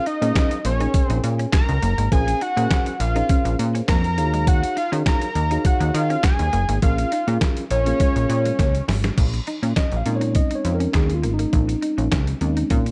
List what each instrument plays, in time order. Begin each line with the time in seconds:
0.06 clean electric guitar D#4, analog synth lead D#5, closed hi-hat
0.21 analog synth bass A#2, tine electric piano C#4 G#4 A#4 C5 F5, clean electric guitar C#4, closed hi-hat
0.36 clean electric guitar C#4, kick, snare, clap, closed hi-hat
0.51 muted clean electric guitar stroke, closed hi-hat
0.65 analog synth bass A#1, analog synth lead C#5, closed hi-hat
0.80 tine electric piano C#4 G#4 A#4 C#5 G#5, clean electric guitar D#4, closed hi-hat
0.94 kick, closed hi-hat
1.05 analog synth lead C5
1.10 analog synth bass A#1, clean electric guitar D#4, closed hi-hat
1.24 analog synth bass A#2, muted clean electric guitar stroke, closed hi-hat
1.39 clean electric guitar C#4, closed hi-hat
1.53 analog synth lead A#5, muted clean electric guitar stroke, kick, snare, clap, closed hi-hat
1.69 analog synth bass C#2, closed hi-hat
1.82 analog synth bass F#1, clean electric guitar A#3, closed hi-hat
1.98 analog synth bass G#1, clean electric guitar A#3, closed hi-hat
2.11 analog synth bass A#1, tine electric piano C#4 G#4 A#4 C5 F5, analog synth lead G#5, kick, closed hi-hat
2.27 muted clean electric guitar stroke, closed hi-hat
2.41 clean electric guitar D#4, analog synth lead F#5, closed hi-hat
2.57 analog synth bass A#2, tine electric piano C#4 G#4 A#4 C5 G#5, clean electric guitar C#4, closed hi-hat
2.71 clean electric guitar C#4, kick, snare, clap, closed hi-hat
2.86 muted clean electric guitar stroke, closed hi-hat
3.00 analog synth bass A#1, analog synth lead F5, closed hi-hat
3.15 tine electric piano C#4 G#4 A#4 C5 F5, clean electric guitar D#4, closed hi-hat
3.29 clean electric guitar C#4, kick, closed hi-hat
3.45 analog synth bass A#1, muted clean electric guitar stroke, closed hi-hat
3.59 analog synth bass A#2, closed hi-hat
3.75 clean electric guitar C#4, closed hi-hat
3.88 analog synth bass F2, clean electric guitar A#3, analog synth lead A#5, kick, snare, clap, closed hi-hat
4.04 closed hi-hat
4.18 analog synth bass D#2, tine electric piano D#4 F4 G#4 C#5 F5, muted clean electric guitar stroke, closed hi-hat
4.24 tine electric piano F#4
4.34 clean electric guitar G#3, closed hi-hat
4.47 analog synth lead F#5, kick, closed hi-hat
4.63 muted clean electric guitar stroke, closed hi-hat
4.77 clean electric guitar D#4, analog synth lead F5, closed hi-hat
4.92 analog synth bass D#3, clean electric guitar C#4, tine electric piano D#4 F#4 G#4 C#5 F5, closed hi-hat
5.06 clean electric guitar C#4, analog synth lead A#5, kick, snare, clap, closed hi-hat
5.22 muted clean electric guitar stroke, closed hi-hat
5.35 analog synth bass D#2, closed hi-hat
5.51 clean electric guitar D#4, tine electric piano D#4 F#4 G#4 C#5 F5, closed hi-hat
5.65 analog synth lead F#5, kick, closed hi-hat
5.80 analog synth bass D#2, clean electric guitar D#4, closed hi-hat
5.94 analog synth bass D#3, analog synth lead F5, muted clean electric guitar stroke, closed hi-hat
6.10 clean electric guitar C#4, closed hi-hat
6.24 analog synth lead G#5, muted clean electric guitar stroke, kick, snare, clap, closed hi-hat
6.39 analog synth bass D#2, closed hi-hat
6.53 analog synth bass F#1, clean electric guitar A#3, closed hi-hat
6.69 analog synth bass G#1, clean electric guitar A#3, closed hi-hat
6.82 analog synth bass A#1, tine electric piano C#4 F4 G#4 A#4 F5, analog synth lead F5, kick, closed hi-hat
6.98 muted clean electric guitar stroke, closed hi-hat
7.12 clean electric guitar D#4, closed hi-hat
7.27 analog synth bass A#2, tine electric piano C#4 F4 G#4 A#4 F5, clean electric guitar C#4, closed hi-hat
7.41 clean electric guitar C#4, kick, snare, clap, closed hi-hat
7.57 muted clean electric guitar stroke, closed hi-hat
7.71 analog synth bass A#1, analog synth lead C#5, closed hi-hat
7.86 clean electric guitar A#3, tine electric piano C#4 F4 G#4 A#4 F5, closed hi-hat
8.00 clean electric guitar G#3, kick, closed hi-hat
8.16 analog synth bass A#1, muted clean electric guitar stroke, closed hi-hat
8.29 analog synth bass A#2, closed hi-hat
8.45 clean electric guitar G#3, closed hi-hat
8.59 analog synth bass C#2, clean electric guitar A#3, kick, snare, closed hi-hat
8.75 closed hi-hat
8.88 analog synth bass G#1, muted clean electric guitar stroke, snare, open hi-hat
9.04 clean electric guitar G#3, snare, closed hi-hat
9.18 analog synth bass A#1, kick, closed hi-hat, crash
9.34 muted clean electric guitar stroke, closed hi-hat
9.47 clean electric guitar D#4, closed hi-hat
9.63 analog synth bass A#2, clean electric guitar C#4, closed hi-hat
9.76 clean electric guitar C#4, tine electric piano D#5, kick, snare, clap, closed hi-hat
9.92 analog synth bass A#1, muted clean electric guitar stroke, closed hi-hat
9.97 tine electric piano F5
10.05 analog synth bass A#2, tine electric piano G#3 C4 C#4 D#4, closed hi-hat
10.16 tine electric piano C#5
10.21 clean electric guitar D#4, closed hi-hat
10.35 tine electric piano D#5, kick, closed hi-hat
10.51 clean electric guitar D#4, closed hi-hat
10.55 tine electric piano C#5
10.65 analog synth bass F2, muted clean electric guitar stroke, closed hi-hat
10.75 tine electric piano A#4
10.80 clean electric guitar C#4, closed hi-hat
10.94 analog synth bass D#2, tine electric piano G#4, muted clean electric guitar stroke, kick, snare, clap, closed hi-hat
11.10 closed hi-hat
11.14 tine electric piano F4
11.23 analog synth bass G#1, clean electric guitar A#3, closed hi-hat
11.34 tine electric piano D#4
11.39 clean electric guitar A#3, closed hi-hat
11.53 analog synth bass A#1, kick, closed hi-hat
11.69 muted clean electric guitar stroke, closed hi-hat
11.82 clean electric guitar D#4, closed hi-hat
11.98 analog synth bass A#1, clean electric guitar C#4, closed hi-hat
12.12 analog synth bass C#2, clean electric guitar C#4, kick, snare, clap, closed hi-hat
12.27 muted clean electric guitar stroke, closed hi-hat
12.41 analog synth bass D#2, tine electric piano G#3 C4 C#4 D#4, closed hi-hat
12.57 clean electric guitar D#4, closed hi-hat
12.70 analog synth bass A#2, clean electric guitar C#4, kick, closed hi-hat
12.86 muted clean electric guitar stroke, closed hi-hat